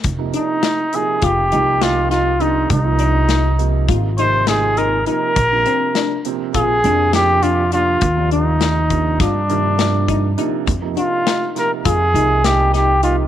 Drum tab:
HH |xxxxxxxxx|xxxxxxxxx|xxxxxxxxx|xxxxxxxxx|
SD |--o---oo-|--o---o--|--o---o--|--o-o-o--|
BD |o---o----|o---o----|o---o----|o--oo--o-|

HH |xxxxxxxxx|
SD |--oo--oo-|
BD |o---o----|